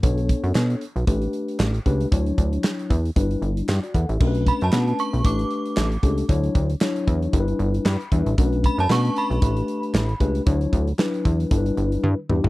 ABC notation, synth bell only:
X:1
M:4/4
L:1/16
Q:"Swing 16ths" 1/4=115
K:Bm
V:1 name="Synth bell"
z16 | z16 | z2 b a3 c'2 d'6 z2 | z16 |
z2 b a c'2 b8 z2 | z16 |]